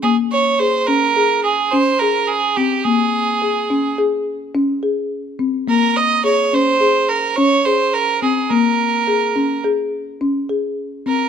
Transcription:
X:1
M:5/4
L:1/8
Q:1/4=106
K:Bbdor
V:1 name="Fiddle"
A d c B2 A c B A G | A4 z6 | B e d c2 B d c B A | B4 z4 z B |]
V:2 name="Marimba"
B,2 A D A2 D A2 C | B,2 A D A2 D A2 C | B,2 A D A2 D A2 C | B,2 A D A2 D A2 C |]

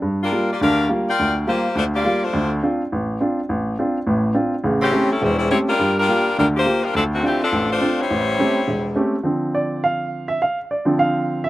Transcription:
X:1
M:4/4
L:1/8
Q:"Swing" 1/4=208
K:Dm
V:1 name="Saxophone section"
z [G,DFB]2 [B,FGd] [DGBf]2 z [FBdg]- | [FBdg] z [B,FGc]2 [A,DFc] [B,FGd]2 [A,DFc]- | [A,DFc] z6 z | z8 |
z [E,^B,^CG]2 [G,CEA] [G,CE^B] [G,CEB] [G,B,E^c] [G,DF_B]- | [G,DFB] [G,DFB]3 [G,DFB] [B,FGc]2 [G,DFB] | [F,CDA] [_E,A,C^F] [=E,A,CG] [=F,CDA]2 [A,D=Fc]2 [G,Ec^c]- | [G,Ec^c]6 z2 |
z8 | z8 |]
V:2 name="Grand piano"
z8 | z8 | z8 | z8 |
z8 | z8 | z8 | z8 |
z2 d2 f3 e | f z d2 f3 e |]
V:3 name="Grand piano"
G,,2 [G,B,F] z [D,,D,]2 [G,B,F] z | D,,2 [G,B,F] z D,,2 [G,B,F] z | [D,,D,]2 [CDF] z A,,,2 [CDF] z | A,,,2 [CDF] z [A,,,A,,]2 [CDF] z |
[A,,,^C,]2 [A,^B,^CG] z [E,,,E,,]2 [A,B,CG] z | [G,,G,]2 [B,FG] z [D,,D,]2 [B,FG] z | D,,2 [CDF] z A,,,2 [CDF] z | A,,,2 [A,^B,^CG] z E,,,2 [A,B,CG] z |
[D,F,C]8 | z3 [D,F,C]4- [D,F,C] |]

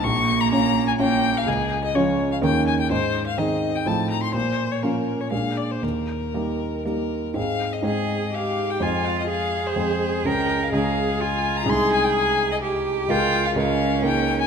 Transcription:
X:1
M:3/4
L:1/16
Q:1/4=125
K:Bbdor
V:1 name="Violin"
d'3 b b3 a g3 f | [K:Ab] A3 e d3 f g2 a g | c3 f e3 g =a2 b c' | c3 d B3 d f2 =d c |
B8 B4 | f3 e e4 f3 g | a2 f e f3 c c4 | g3 f f4 a3 b |
c'2 a g a3 e z4 | g3 f f4 g3 a |]
V:2 name="Cello"
B,8 B,4 | [K:Ab] z4 F,4 E,4 | z4 E,4 F,4 | z4 F,4 A,4 |
z4 G,4 G,4 | z4 A4 G4 | F4 A8 | B4 A4 F4 |
A8 G4 | F4 D8 |]
V:3 name="Grand piano"
B,,,4 [DFd]4 [DFd]4 | [K:Ab] D,,4 [DFd]4 [E,,DEB]4 | A,,4 [CEA]4 [=A,,CEF]4 | B,,4 [B,DF]4 [B,,B,=DA]4 |
E,,4 [B,EG]4 [B,EG]4 | [A,,A,CA]4 [A,,A,CA]8 | [F,,A,CA]8 [F,,A,CA]4 | [D,,A,DA]4 [D,,A,DA]8 |
[C,,A,EA]12 | [D,,A,FB]4 [D,,A,FB]4 [D,,B,EB]4 |]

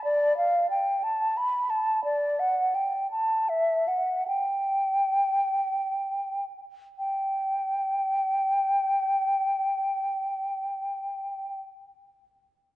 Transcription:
X:1
M:6/8
L:1/8
Q:3/8=45
K:G
V:1 name="Flute"
d =f g a b a | d f g a e f | g4- g z | g6- |
g6 |]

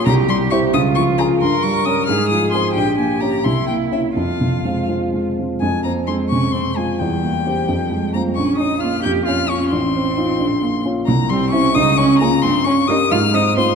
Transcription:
X:1
M:6/8
L:1/16
Q:3/8=88
K:Fm
V:1 name="Violin"
b2 c'2 d'2 e'2 d'2 b2 | c'2 d'2 e'2 f'2 e'2 c'2 | g2 a2 b2 c'2 g2 =e2 | f6 z6 |
a2 b2 c'2 d'2 c'2 a2 | g8- g2 b2 | d'2 e'2 f'2 g'2 f'2 d'2 | c'8- c'2 z2 |
b2 c'2 d'2 e'2 d'2 b2 | c'2 d'2 e'2 f'2 e'2 c'2 |]
V:2 name="Cello"
G6 F6 | B6 A6 | G6 =E6 | F8- F z3 |
A,2 B,2 C2 D2 C2 A,2 | G,8- G,2 B,2 | D2 E2 F2 G2 F2 D2 | C8- C2 z2 |
B,2 C2 D2 E2 D2 B,2 | C2 D2 E2 F2 E2 C2 |]
V:3 name="Grand piano"
C,,2 G,2 [=Ec]2 D,,2 F,2 [FA]2 | G,,2 G,2 [DB]2 A,,2 F,2 [CA]2 | B,,,2 B,2 [DG]2 C,,2 B,2 [D=E]2 | F,,2 C,2 [A,CF]2 [A,CF]2 A,2 [A,CF]2 |
F,,2 C2 A,2 C,2 C2 F2 | =E,,2 B,2 [CG]2 F,,2 A,2 [CF]2 | B,,,2 D2 B,2 F,,2 D2 F2 | =A,,,2 C2 [EF]2 B,,,2 B,2 [DF]2 |
C,,2 G,2 [C=E]2 D,,2 D2 [FA]2 | G,,2 D2 [GB]2 A,,2 C2 [Fc]2 |]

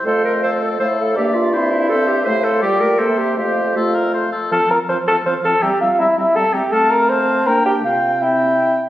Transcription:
X:1
M:3/4
L:1/8
Q:1/4=162
K:F
V:1 name="Flute"
f6 | e2 e2 e2 | f2 g2 e2 | f2 f3 z |
a a a a a a | b b b b b b | a2 a2 g2 | g2 g3 z |]
V:2 name="Oboe"
c2 A2 A2 | d2 c2 c2 | c2 d2 c2 | c2 A B c A |
f f f f f f | e e e e e e | f2 f2 g2 | g2 g3 z |]
V:3 name="Bassoon"
F,,4 A,,2 | G,,6 | A,,2 B,,2 C,2 | F,,4- F,, z |
A B c A c A | G F E E A G | A B c2 B G | F2 E3 z |]
V:4 name="Clarinet"
A B c A c A | G F E E A G | c A G B A G | G2 F3 z |
C C C C C C | C C C C C C | C2 C2 D2 | C2 C3 z |]
V:5 name="French horn" clef=bass
A,4 A,2 | B,2 C2 C2 | A,2 G, A, B,2 | A,2 A,3 z |
F, F, F, F, F, F, | G, G, G, G, G, G, | A,4 B,2 | C,4- C, z |]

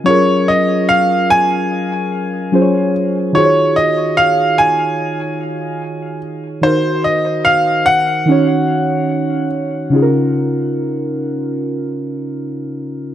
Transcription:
X:1
M:4/4
L:1/8
Q:1/4=73
K:Ebdor
V:1 name="Grand piano"
d e f a4 z | d e f a4 z | c e f g4 z | z8 |]
V:2 name="Synth keys"
[G,DFAB]6 [G,DFAcd]2 | [E,EFGAcd]8 | [E,EGBc]4 [E,DEGd]4 | [D,DEFAB]8 |]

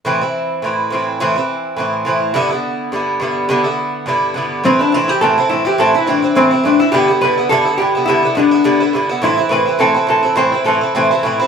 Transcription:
X:1
M:4/4
L:1/8
Q:"Swing" 1/4=209
K:Am
V:1 name="Hollow-body jazz guitar"
z8 | z8 | z8 | z8 |
C D E G A2 E G | A E D2 C2 D E | G2 B2 A2 G2 | E2 D4 z2 |
E2 B2 A2 A2 | c2 A4 z2 |]
V:2 name="Bouzouki"
[A,,E,CE] [E,CE]3 [A,,E,CE]2 [A,,E,CE]2 | [A,,E,CE] [E,CE]3 [A,,E,CE]2 [A,,E,CE]2 | [G,,D,B,E] [D,B,E]3 [G,,D,B,E]2 [G,,D,B,E]2 | [G,,D,B,E] [D,B,E]3 [G,,D,B,E]2 [G,,D,B,E]2 |
[A,,E,CE] [E,CE] [A,,E,CE] [E,CE] [A,,E,CE] [E,CE] [A,,E,CE] [E,CE] | [A,,E,CE] [E,CE] [A,,E,CE] [E,CE] [A,,E,CE] [E,CE] [A,,E,CE] [E,CE] | [G,,D,B,E] [D,B,E] [G,,D,B,E] [D,B,E] [G,,D,B,E] [D,B,E] [G,,D,B,E] [D,B,E] | [G,,D,B,E] [D,B,E] [G,,D,B,E] [D,B,E] [G,,D,B,E] [D,B,E] [G,,D,B,E] [D,B,E] |
[A,,E,CE] [E,CE] [A,,E,CE] [E,CE] [A,,E,CE] [E,CE] [A,,E,CE] [E,CE] | [A,,E,CE] [E,CE] [A,,E,CE] [E,CE] [A,,E,CE] [E,CE] [A,,E,CE] [E,CE] |]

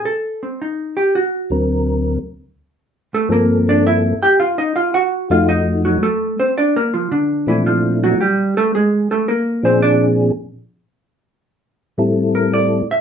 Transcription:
X:1
M:4/4
L:1/8
Q:"Swing" 1/4=111
K:Bblyd
V:1 name="Hollow-body jazz guitar"
A C _E G ^F4 | z3 [A,A] [B,B] [Dd] [Ee] [Gg] | (3[Ff] [_E_e] [Ff] [_G_g] [Ff] [Ee] [_G,G] [A,A] [Cc] | (3[Dd] [B,B] [F,F] [D,D] [E,E] [F,F] [_G,_G] [=G,=G] [A,A] |
[_A,_A] [=A,=A] [B,B] [Cc] [Dd] z3 | z4 z B d e |]
V:2 name="Tonewheel organ"
z4 z [D,,D,^F,C^A]3 | z4 [G,,F,B,CA]3 z | z3 [F,,F,A,_E_G]3 z2 | z3 [B,,F,A,CDE]3 z2 |
z3 [B,,F,CD_A]3 z2 | z4 [A,,G,CEA]3 z |]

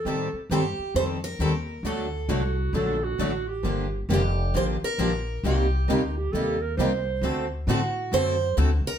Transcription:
X:1
M:4/4
L:1/16
Q:"Swing" 1/4=134
K:Dphr
V:1 name="Steel-string acoustic guitar"
z4 G4 c2 B6 | A6 z8 z2 | z4 G4 c2 B6 | G6 z8 z2 |
z4 ^F4 c4 z2 B2 |]
V:2 name="Clarinet"
A3 z12 z | z4 ^F4 A2 F4 G2- | G3 z12 z | z4 E2 G2 A2 B2 c4- |
c3 z12 z |]
V:3 name="Steel-string acoustic guitar"
[E,G,CGA]2 z2 [E,G,CGA]2 z2 [E,G,CGA]2 z2 [E,G,CGA]2 z2 | [D,A,D^FA]2 z2 [D,A,DFA]2 z2 [D,A,DFA]2 z2 [D,A,DFA]2 z2 | [D,F,B,DG]2 z2 [D,F,B,DG]2 z2 [D,F,B,DG]2 z2 [D,F,B,DG]2 z2 | [C,G,B,EG]2 z2 [C,G,B,EG]2 z2 [C,G,B,EG]2 z2 [C,G,B,EG]2 z2 |
[D,A,C^FA]2 z2 [D,A,CFA]2 z2 [D,A,CFA]2 z2 [D,A,CFA]2 z2 |]
V:4 name="Steel-string acoustic guitar"
[E,G,CGA]2 z2 [E,G,CGA]2 z2 [E,G,CGA]2 z2 [E,G,CGA]2 z2 | [D,^F,A,D^F]2 z2 [D,F,A,DF]2 z2 [D,F,A,DF]2 z2 [D,F,A,DF]2 z2 | [D,F,B,DG]2 z2 [D,F,B,DG]2 z2 [D,F,B,DG]2 z2 [D,F,B,DG]2 z2 | [C,G,B,EG]2 z2 [C,G,B,EG]2 z2 [C,G,B,EG]2 z2 [C,G,B,EG]2 z2 |
[D,A,C^FA]2 z2 [D,A,CFA]2 z2 [D,A,CFA]2 z2 [D,A,CFA]2 z2 |]
V:5 name="Upright bass" clef=bass
A,,2 z2 G,,2 z2 F,,4 E,,4 | D,,4 C,,4 B,,,4 A,,,4 | G,,,4 F,,,4 A,,,2 z2 B,,,4 | C,,4 D,,4 E,,4 C,,4 |
D,,4 A,,4 ^F,,4 D,,2 z2 |]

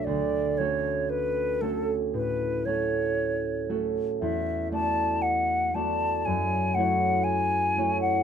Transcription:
X:1
M:4/4
L:1/16
Q:1/4=58
K:Dlyd
V:1 name="Flute"
d2 c2 B2 A z B2 c4 z2 | e2 a2 f2 a2 g2 f2 g3 f |]
V:2 name="Harp"
[D,,A,CDFc]2 [A,CFA]4 [A,CFA]2 A,,2 [A,CFA]4 [A,CFA]2 | E,,2 [A,B,Fd]4 [A,B,Fd]2 F,,2 [A,EFc]4 [A,EFc]2 |]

